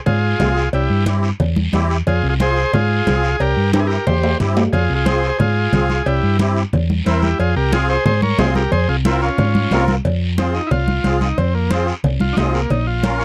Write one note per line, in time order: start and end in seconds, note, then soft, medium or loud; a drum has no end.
0.06 0.33 G#2 medium
0.06 0.69 F4 medium
0.06 0.69 G#4 medium
0.06 cowbell medium
0.06 high conga soft
0.06 low conga medium
0.06 long guiro medium
0.39 0.66 C2 medium
0.39 0.63 C4 medium
0.39 0.63 F4 medium
0.39 0.64 G#4 medium
0.39 cowbell medium
0.39 high conga medium
0.39 low conga medium
0.39 low timbale medium
0.39 short guiro medium
0.57 short guiro medium
0.73 0.86 C2 loud
0.73 1.05 E4 medium
0.73 1.05 G4 medium
0.73 cowbell medium
0.73 high conga soft
0.73 long guiro medium
0.90 1.30 G2 loud
1.06 1.30 C4 medium
1.06 1.30 E4 medium
1.06 1.30 G4 medium
1.06 cowbell medium
1.06 high conga medium
1.06 short guiro medium
1.23 short guiro medium
1.40 1.67 E2 medium
1.40 cowbell medium
1.40 high conga soft
1.40 low conga medium
1.40 long guiro medium
1.56 high conga medium
1.73 2.00 E2 medium
1.73 1.97 C4 medium
1.73 1.97 E4 medium
1.73 1.97 G4 loud
1.73 cowbell medium
1.73 high conga medium
1.73 low timbale medium
1.73 short guiro medium
1.90 short guiro medium
2.07 2.20 F2 medium
2.07 2.28 F4 medium
2.07 2.28 G#4 loud
2.07 cowbell medium
2.07 high conga soft
2.07 low conga medium
2.07 long guiro medium
2.23 2.63 C2 loud
2.29 2.35 F4 medium
2.29 2.34 G#4 medium
2.39 2.63 C4 medium
2.39 2.63 F4 medium
2.39 2.64 G#4 medium
2.39 2.72 G#4 medium
2.39 2.75 C5 loud
2.39 cowbell medium
2.39 high conga medium
2.39 short guiro medium
2.57 short guiro medium
2.73 3.00 G#2 loud
2.73 3.37 F4 medium
2.73 3.42 G#4 loud
2.73 cowbell medium
2.73 high conga soft
2.73 low conga medium
2.73 long guiro medium
3.06 3.33 C2 medium
3.06 3.30 C4 medium
3.06 3.30 F4 medium
3.06 3.30 G#4 medium
3.06 cowbell medium
3.06 high conga medium
3.06 low conga medium
3.06 short guiro medium
3.23 short guiro medium
3.40 3.53 C2 loud
3.40 3.72 G4 medium
3.40 3.71 A#4 loud
3.40 cowbell medium
3.40 high conga soft
3.40 long guiro medium
3.57 3.97 G2 loud
3.73 3.96 C4 medium
3.73 3.97 E4 medium
3.73 3.97 G4 medium
3.73 3.80 G4 medium
3.73 3.81 A#4 medium
3.73 cowbell medium
3.73 high conga medium
3.73 high timbale medium
3.73 short guiro medium
3.80 3.87 G#4 medium
3.87 4.05 G4 medium
3.87 4.07 A#4 medium
3.87 short guiro medium
4.07 4.33 E2 medium
4.07 4.38 G4 medium
4.07 4.38 C5 medium
4.07 cowbell medium
4.07 high conga soft
4.07 low conga medium
4.07 low timbale medium
4.07 long guiro medium
4.23 low timbale medium
4.40 4.66 G2 medium
4.40 4.63 C4 medium
4.40 4.63 E4 medium
4.40 4.63 G4 medium
4.40 cowbell medium
4.40 high conga medium
4.40 low conga medium
4.40 short guiro medium
4.57 low timbale medium
4.57 short guiro medium
4.73 4.87 F2 medium
4.73 4.94 F4 medium
4.73 4.93 G#4 loud
4.73 cowbell medium
4.73 high conga soft
4.73 low conga medium
4.73 long guiro medium
4.90 5.30 C2 loud
4.94 5.06 F4 medium
4.94 5.06 G#4 medium
5.05 5.30 C4 medium
5.05 5.30 F4 medium
5.05 5.27 G#4 medium
5.05 5.30 G#4 medium
5.05 5.26 C5 medium
5.05 cowbell medium
5.05 high conga medium
5.05 short guiro medium
5.23 short guiro medium
5.28 5.37 G#4 medium
5.28 5.38 C5 loud
5.39 5.66 G#2 medium
5.39 6.03 F4 medium
5.39 6.08 G#4 loud
5.39 cowbell medium
5.39 high conga soft
5.39 low conga medium
5.39 long guiro medium
5.73 6.00 C2 medium
5.73 5.96 C4 medium
5.73 5.97 F4 medium
5.73 5.97 G#4 medium
5.73 cowbell medium
5.73 high conga medium
5.73 low conga medium
5.73 short guiro medium
5.90 high conga medium
5.90 short guiro medium
6.06 6.19 C2 loud
6.06 6.38 E4 medium
6.06 6.37 G4 medium
6.06 cowbell loud
6.06 high conga soft
6.06 long guiro medium
6.23 6.63 G2 loud
6.39 6.63 C4 medium
6.39 6.63 E4 medium
6.39 6.63 G4 medium
6.39 cowbell medium
6.39 high conga medium
6.39 short guiro medium
6.56 short guiro medium
6.73 7.00 E2 medium
6.73 cowbell medium
6.73 high conga soft
6.73 low conga medium
6.73 long guiro medium
6.90 high conga medium
7.06 7.33 E2 medium
7.06 7.29 C4 medium
7.06 7.22 C4 medium
7.06 7.29 E4 medium
7.06 7.23 E4 medium
7.06 7.30 A#4 medium
7.06 cowbell medium
7.06 high conga medium
7.06 short guiro medium
7.22 7.39 E4 medium
7.22 7.38 G4 medium
7.22 high conga medium
7.22 short guiro medium
7.39 7.53 F2 loud
7.39 7.55 F4 medium
7.39 7.55 G#4 medium
7.39 cowbell medium
7.39 high conga soft
7.39 long guiro medium
7.56 7.96 C2 loud
7.56 7.72 G4 medium
7.56 7.73 A#4 medium
7.72 7.96 C4 medium
7.72 7.96 F4 medium
7.72 7.88 F4 medium
7.72 7.89 G#4 loud
7.72 7.96 G#4 medium
7.72 cowbell medium
7.72 high conga medium
7.72 short guiro medium
7.89 8.05 G#4 medium
7.89 8.04 C5 loud
7.89 short guiro medium
8.06 8.32 G#2 medium
8.06 8.21 G#4 medium
8.06 8.21 C5 loud
8.06 cowbell medium
8.06 high conga soft
8.06 low conga medium
8.06 long guiro medium
8.22 8.38 A#4 medium
8.22 8.40 C#5 medium
8.22 high conga medium
8.38 8.66 C2 medium
8.38 8.62 C4 medium
8.38 8.62 F4 medium
8.38 8.54 G#4 medium
8.38 8.62 G#4 medium
8.38 8.54 C5 loud
8.38 cowbell medium
8.38 high conga medium
8.38 low conga medium
8.38 low timbale medium
8.38 short guiro medium
8.55 8.71 G4 medium
8.55 8.71 A#4 medium
8.55 high conga medium
8.55 short guiro medium
8.72 8.85 F2 loud
8.72 8.88 G#4 medium
8.72 8.89 C5 loud
8.72 cowbell medium
8.72 high conga soft
8.72 low conga medium
8.72 long guiro medium
8.88 9.28 C2 medium
8.88 8.97 F4 medium
8.88 8.96 G#4 medium
9.05 9.29 C4 medium
9.05 9.21 C4 medium
9.05 9.21 E4 medium
9.05 9.29 F4 medium
9.05 9.29 A#4 medium
9.05 cowbell medium
9.05 high conga loud
9.05 short guiro medium
9.22 9.85 C#4 medium
9.22 9.84 F4 medium
9.22 short guiro medium
9.38 9.65 G#2 medium
9.38 cowbell medium
9.38 high conga soft
9.38 low conga medium
9.38 long guiro medium
9.55 high conga medium
9.71 9.99 C2 medium
9.71 9.95 C4 medium
9.71 9.95 F4 medium
9.71 9.95 A#4 loud
9.71 cowbell medium
9.71 high conga medium
9.71 low timbale medium
9.71 short guiro medium
9.88 high conga medium
9.88 short guiro medium
10.05 10.58 F2 medium
10.05 cowbell medium
10.05 high conga soft
10.05 low conga medium
10.05 long guiro medium
10.38 10.61 C4 medium
10.38 10.54 C4 medium
10.38 10.61 F4 medium
10.38 10.62 G#4 medium
10.38 cowbell medium
10.38 high conga medium
10.38 short guiro medium
10.55 10.71 D#4 medium
10.55 short guiro medium
10.67 10.69 E4 medium
10.71 10.98 C2 medium
10.71 11.20 F4 loud
10.71 cowbell medium
10.71 high conga soft
10.71 low conga medium
10.71 long guiro medium
10.88 high conga medium
11.04 11.31 C2 medium
11.04 11.28 C4 medium
11.04 11.28 F4 medium
11.04 11.28 G#4 medium
11.04 cowbell medium
11.04 high conga medium
11.04 short guiro medium
11.21 11.38 D#4 medium
11.21 high conga medium
11.21 short guiro medium
11.38 11.91 F2 medium
11.38 11.54 C4 medium
11.38 cowbell medium
11.38 high conga soft
11.38 low conga medium
11.38 long guiro medium
11.55 11.71 A#3 medium
11.70 11.87 C4 loud
11.70 11.94 C4 medium
11.70 11.94 F4 medium
11.70 11.94 G#4 medium
11.70 cowbell medium
11.70 high conga medium
11.70 short guiro medium
11.87 short guiro medium
12.04 12.31 C2 medium
12.04 cowbell medium
12.04 high conga soft
12.04 low conga medium
12.04 long guiro medium
12.20 12.37 F4 medium
12.20 high conga medium
12.33 12.35 D4 medium
12.33 high conga medium
12.38 12.64 C2 medium
12.38 12.61 C4 medium
12.38 12.54 D#4 loud
12.38 12.61 F4 medium
12.38 12.61 G#4 medium
12.38 cowbell medium
12.38 low timbale medium
12.38 short guiro medium
12.54 12.71 A#3 medium
12.54 short guiro medium
12.70 13.24 A#1 loud
12.70 12.87 D#4 medium
12.70 cowbell medium
12.70 high conga soft
12.70 low conga medium
12.70 long guiro medium
12.87 13.19 F4 medium
13.03 13.25 C#4 medium
13.03 13.25 F4 medium
13.03 13.25 A#4 medium
13.03 cowbell medium
13.03 high conga medium
13.03 short guiro medium
13.20 13.25 C#4 medium
13.20 13.25 F4 medium
13.20 short guiro medium